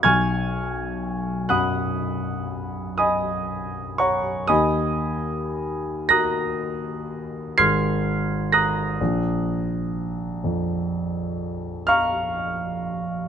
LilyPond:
<<
  \new Staff \with { instrumentName = "Grand piano" } { \time 9/8 \key b \lydian \tempo 4. = 41 <gis'' cis''' eis''' gis'''>4. <fis'' b'' dis''' fis'''>4. <dis'' gis'' b'' dis'''>4 <cis'' fis'' ais'' cis'''>8 | <dis'' gis'' b'' dis'''>4. <ais'' dis''' fis''' ais'''>4. <bis'' eis''' gis''' bis'''>4 <ais'' dis''' fis''' ais'''>8~ | <ais'' dis''' fis''' ais'''>2. <eis'' ais'' cis''' eis'''>4. | }
  \new Staff \with { instrumentName = "Grand piano" } { \clef bass \time 9/8 \key b \lydian b,,4. fis,2. | dis,4. <fis' ais'>4. <gis,, gis' ais'>4. | ais,,4. eis,2. | }
>>